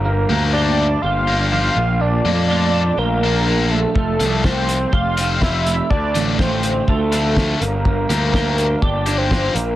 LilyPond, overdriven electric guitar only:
\new Staff \with { instrumentName = "Overdriven electric guitar" } { \time 4/4 \key g \dorian \tempo 4 = 123 r8 <bes d' g'>8 <bes d' g'>8 r4 <bes d' g'>8 <bes d' g'>8 r8 | r8 <f bes d' f'>8 <f bes d' f'>8 r4 <f bes d' f'>8 <f bes d' f'>8 r8 | r8 <f a c' f'>8 <f a c' f'>8 r4 <f a c' f'>8 <f a c' f'>8 r8 | r8 <f a d' f'>8 <f a d' f'>8 r4 <f a d' f'>8 <f a d' f'>8 r8 |
r8 <bes d' g'>8 <bes d' g'>8 r4 <bes d' g'>8 <bes d' g'>8 r8 | }